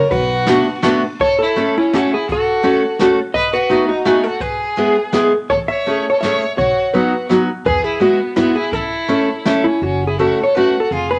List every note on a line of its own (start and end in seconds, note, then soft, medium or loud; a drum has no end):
0.00 0.10 A#4 medium
0.00 0.11 A#4 medium
0.00 0.12 C#5 medium
0.11 0.58 B1 medium
0.11 0.79 F#4 medium
0.11 0.80 F#4 medium
0.11 0.79 B4 loud
0.11 kick medium
0.11 ride soft
0.47 0.66 A3 medium
0.47 0.66 B3 soft
0.47 0.66 D4 medium
0.47 0.66 F#4 medium
0.47 snare medium
0.47 ride soft
0.82 1.02 A3 medium
0.82 1.02 B3 medium
0.82 1.02 D4 medium
0.82 1.02 F#4 medium
0.82 snare medium
0.82 ride soft
1.20 1.38 A4 medium
1.20 1.40 C#5 medium
1.20 kick medium
1.20 closed hi-hat soft
1.39 1.74 E4 medium
1.39 1.76 A4 medium
1.56 1.75 A3 medium
1.56 1.75 C#4 soft
1.56 1.76 E4 soft
1.56 1.75 A4 medium
1.56 closed hi-hat soft
1.78 1.96 C#4 medium
1.78 1.96 E4 medium
1.93 2.12 A3 medium
1.93 2.12 C#4 medium
1.93 2.13 C#4 medium
1.93 2.12 E4 soft
1.93 2.13 F#4 medium
1.93 2.12 A4 medium
1.93 snare medium
1.93 closed hi-hat soft
2.13 2.29 E4 medium
2.13 2.29 G#4 medium
2.29 2.96 F#4 medium
2.29 2.97 A4 medium
2.29 kick medium
2.29 closed hi-hat soft
2.63 2.82 A3 medium
2.63 2.82 C#4 medium
2.63 2.83 F#4 medium
2.63 2.83 A4 medium
2.63 closed hi-hat soft
2.99 3.18 A3 medium
2.99 3.18 C#4 medium
2.99 3.18 F#4 medium
2.99 3.19 A4 medium
2.99 snare medium
2.99 closed hi-hat soft
3.34 3.51 B4 medium
3.34 3.53 D#5 loud
3.34 kick medium
3.34 closed hi-hat soft
3.53 3.86 F#4 medium
3.53 3.89 B4 medium
3.69 3.89 A3 medium
3.69 3.88 B3 soft
3.69 3.88 D#4 medium
3.69 3.88 F#4 medium
3.69 closed hi-hat soft
3.89 4.06 D#4 medium
3.89 4.06 F#4 medium
4.05 4.24 A3 medium
4.05 4.24 B3 medium
4.05 4.24 D#4 soft
4.05 4.28 D#4 medium
4.05 4.24 F#4 medium
4.05 4.24 G#4 medium
4.05 snare medium
4.05 closed hi-hat soft
4.24 4.45 F#4 medium
4.24 4.41 A4 medium
4.40 5.14 G#4 medium
4.40 5.13 B4 medium
4.40 kick medium
4.40 closed hi-hat soft
4.76 4.96 G#3 medium
4.76 4.96 B3 soft
4.76 4.96 E4 soft
4.76 4.96 G#4 medium
4.76 closed hi-hat soft
5.12 5.32 G#3 medium
5.12 5.32 B3 medium
5.12 5.32 E4 medium
5.12 5.32 G#4 medium
5.12 snare medium
5.12 closed hi-hat soft
5.50 5.62 A1 medium
5.50 5.58 A4 medium
5.50 5.55 C#5 medium
5.50 kick medium
5.50 closed hi-hat soft
5.68 6.03 C#5 medium
5.68 6.02 E5 medium
5.86 6.05 A3 soft
5.86 6.06 C#4 soft
5.86 6.06 E4 medium
5.86 6.06 G#4 medium
5.86 closed hi-hat soft
6.10 6.20 A4 medium
6.10 6.20 C#5 medium
6.20 6.42 A3 medium
6.20 6.42 C#4 medium
6.20 6.55 C#5 medium
6.20 6.58 E5 medium
6.20 snare soft
6.20 closed hi-hat soft
6.24 6.42 E4 soft
6.24 6.42 G#4 medium
6.58 6.70 B1 medium
6.58 6.91 F#4 medium
6.58 6.95 C#5 medium
6.58 kick medium
6.58 closed hi-hat soft
6.94 7.13 F#3 soft
6.94 7.13 B3 medium
6.94 7.13 D#4 medium
6.94 7.13 F#4 medium
6.94 7.28 F#4 medium
6.94 7.27 B4 medium
6.94 closed hi-hat soft
7.29 7.48 F#3 medium
7.29 7.48 B3 medium
7.29 7.48 D#4 medium
7.29 7.48 F#4 medium
7.29 snare medium
7.29 closed hi-hat soft
7.65 7.78 E2 medium
7.65 7.86 G#4 medium
7.65 7.84 B4 loud
7.65 kick medium
7.65 closed hi-hat soft
7.84 8.04 E4 medium
7.84 8.02 G#4 medium
8.00 8.19 G#3 medium
8.00 8.19 B3 medium
8.00 8.37 B3 medium
8.00 8.19 E4 medium
8.00 8.19 F#4 medium
8.00 8.38 F#4 medium
8.00 closed hi-hat soft
8.36 8.55 G#3 medium
8.36 8.55 B3 medium
8.36 8.54 B3 medium
8.36 8.54 E4 medium
8.36 8.55 E4 soft
8.36 8.56 F#4 medium
8.36 snare medium
8.36 closed hi-hat soft
8.55 8.74 E4 medium
8.55 8.73 G#4 medium
8.72 8.84 A1 medium
8.72 9.46 E4 medium
8.72 9.46 A4 medium
8.72 kick medium
8.72 closed hi-hat soft
9.08 9.28 A3 medium
9.08 9.28 C#4 medium
9.08 9.28 E4 soft
9.08 9.28 A4 medium
9.08 closed hi-hat soft
9.45 9.65 A3 medium
9.45 9.65 C#4 medium
9.45 9.65 E4 medium
9.45 9.65 A4 medium
9.45 snare medium
9.45 closed hi-hat soft
9.64 9.82 C#4 medium
9.64 9.83 E4 medium
9.82 10.30 F#1 medium
9.82 10.06 C#4 medium
9.82 10.07 F#4 medium
10.07 10.19 E4 medium
10.07 10.19 G#4 medium
10.19 10.38 A3 medium
10.19 10.38 C#4 soft
10.19 10.39 E4 soft
10.19 10.39 F#4 medium
10.19 10.42 F#4 medium
10.19 10.45 A4 medium
10.44 10.59 A4 medium
10.44 10.55 C#5 medium
10.55 10.75 A3 medium
10.55 10.75 C#4 soft
10.55 10.75 E4 soft
10.55 10.75 F#4 medium
10.55 10.81 F#4 medium
10.55 10.80 B4 medium
10.80 10.94 F#4 medium
10.80 10.92 A4 medium
10.91 11.19 F1 medium
10.91 11.11 F4 medium
10.91 11.11 G#4 medium
11.11 11.19 G#4 medium
11.11 11.19 B4 medium